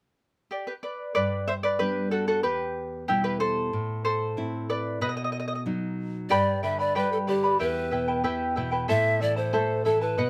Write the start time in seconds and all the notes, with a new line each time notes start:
0.51 G4 D5
0.67 G4 B4
0.83 B4 D5
1.15 G2 B4 D5
1.48 C5 E5
1.63 B4 D5
1.79 G3 B3 D4 G4 B4
2.11 F#4 A4
2.28 F#4 A4
2.43 E2 G4 B4
3.08 B2 G3 E4 G4
3.24 G4 B4
3.40 A4 C5
3.73 A2
4.05 A4 C5
4.37 A3 C4 E4
4.70 B4 D5
5.01 B2 B4 D#5
5.09 D#5
5.17 D#5
5.24 D#5
5.32 D#5
5.40 D#5
5.48 D#5
5.55 D#5
5.66 F#3 B3 D#4
6.29 G2 G4 B4 D5 G5 B5
6.63 D3 B4 D5 E5 G5 B5
6.79 B4 D5 B5
6.95 G3 G4 B4 D5 G5 B5
7.12 A4
7.27 D3 G4 B4 D5 G5 B5
7.43 B4 D5 B5
7.59 E2 E4 G4 B4 E5 G5
7.91 B2 E4 B4 E5 G5
8.08 E4 B4 G5
8.24 E3 E4 G4 B4 E5 G5
8.56 B2 E4 B4 E5 G5
8.72 E4 B4 G5
8.88 A2 E4 A4 C5 E5 A5
9.20 E3 E4 A4 D5 E5 A5
9.36 E4 A4 C5 A5
9.53 A3 E4 A4 C5 E5 A5
9.85 E3 E4 A4 E5 A5
10.01 E4 A4 B4 A5
10.18 B2 B4 D#5 F#5